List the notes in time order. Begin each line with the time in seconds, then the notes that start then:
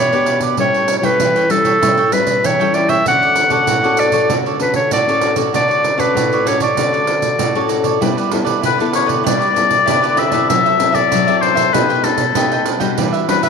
Already playing: B2 E4 G4 B4 C#5 D5
0.12 B3 D4 G4 B4 D5, pandeiro
0.26 E4 G4 B4 D5, pandeiro
0.41 G4 B4 D5, pandeiro
0.57 A2 G3 C#4 E4 A4 C#5 G5, pandeiro
0.74 A4 C#5 G5, pandeiro
0.88 muted cavaquinho stroke, pandeiro
0.98 G3 C#5
1.02 C#4 E4 A4 B4 C#5 G5, pandeiro
1.20 E3 E4 A4 C#5 G5, pandeiro
1.36 A4 C#5 G5, pandeiro
1.50 G3 C#4 E4 A4, pandeiro
1.65 A4 C#5 G5, pandeiro
1.81 A2 G3 C#4 E4 A4 C#5 G5, pandeiro
1.97 A4 C#5 G5, pandeiro
2.11 G3 C#4 E4 B4, muted cavaquinho stroke, pandeiro
2.27 pandeiro
2.44 E3 E4 A4 C#5 G5, pandeiro
2.60 G3 C#4 E4 A4 C#5 G5, pandeiro
2.74 E4 A4 C#5 D5 G5, pandeiro
2.89 A4 C#5 E5 G5, pandeiro
3.06 D3 C#4 F#4 A4 C#5 D5 F#5, pandeiro
3.23 A4 C#5 D5, pandeiro
3.36 muted cavaquinho stroke, pandeiro
3.50 C#4 F#4 A4 C#5 D5 F#5, pandeiro
3.67 A2 F#4 A4 C#5 D5, pandeiro
3.83 C#4 F#4 A4 C#5 D5, pandeiro
3.97 D5, pandeiro
4.12 C#4 F#4 A4 C#5 D5, pandeiro
4.29 D3 F#4 A4 C#5 D5, pandeiro
4.46 A4 C#5 D5, pandeiro
4.59 C#4 F#4 A4 B4, muted cavaquinho stroke, pandeiro
4.74 C#5, pandeiro
4.91 A2 F#4 A4 C#5 D5, pandeiro
5.07 C#4 F#4 A4 C#5 D5, pandeiro
5.21 F#4 A4 C#5 D5, pandeiro
5.36 C#4 F#4 A4 C#5 D5, pandeiro
5.53 D3 F#4 A4 C#5 D5, pandeiro
5.68 A4 C#5 D5, pandeiro
5.83 muted cavaquinho stroke, pandeiro
5.98 C#4 F#4 A4 B4 C#5 D5, pandeiro
6.14 A2 F#4 A4 C#5 D5, pandeiro
6.32 A4 C#5 D5, pandeiro
6.45 C#4 F#4 A4 C#5, pandeiro
6.60 A4 C#5 D5, pandeiro
6.77 D3 C#4 F#4 A4 C#5 D5, pandeiro
6.93 A4 C#5 D5, pandeiro
7.07 F#4 A4, muted cavaquinho stroke, pandeiro
7.22 pandeiro
7.38 A2 F#4 A4 C#5 D5, pandeiro
7.55 C#4 F#4 A4 C#5 D5, pandeiro
7.68 F#4 A4 C#5 D5, pandeiro
7.84 A4 C#5 D5, pandeiro
8.01 G3 B3 E4 G4 A4 B4 D5, pandeiro
8.17 G4 B4 D5, pandeiro
8.31 B3 E4 A4, muted cavaquinho stroke, pandeiro
8.45 G4 B4 D5, pandeiro
8.62 D3 E4 G4 B4 D5, pandeiro
8.78 B3 E4 G4 A4 B4 D5, pandeiro
8.93 C#5, pandeiro
9.06 G4 B4 D5, pandeiro
9.23 G3 E4 G4 B4 D5, pandeiro
9.39 G4 B4 D5, pandeiro
9.54 B3 E4 A4, muted cavaquinho stroke, pandeiro
9.71 pandeiro
9.86 D3 B3 E4 G4 A4 B4 D5, pandeiro
10.01 G4 B4 D5, pandeiro
10.16 E4 G4 B4 D5 E5, pandeiro
10.32 C4 E4 G4 A4 B4 D5, pandeiro
10.49 F#3 F#4 A4 C5 E5, pandeiro
10.66 A4 C5 E5, pandeiro
10.78 C4 E4 A4, muted cavaquinho stroke, pandeiro
10.92 A4 C5 D5 E5, pandeiro
11.10 F#3 F#4 A4 C5 E5, pandeiro
11.27 C4 E4 A4 C5 E5, pandeiro
11.41 C5, pandeiro
11.55 A4 C5 E5, pandeiro
11.72 B2 A3 D#4 G4 A4 B4 D#5 G5, pandeiro
11.89 B4 D#5 G5, pandeiro
12.04 A3 D#4 G4 A4, muted cavaquinho stroke, pandeiro
12.18 pandeiro
12.35 B2 A3 D#4 G4 A4 B4 D#5 G5, pandeiro
12.51 B4 D#5 G5, pandeiro
12.65 A4 B4 D#5 G5, pandeiro
12.80 G3 D4 F#4 B4 D#5 G5, pandeiro
12.97 E3 D4 G4 B4 E5, pandeiro
13.13 G4 B4 E5, pandeiro
13.28 G3 D4 F#4 B4, muted cavaquinho stroke, pandeiro
13.43 G4 B4 E5, pandeiro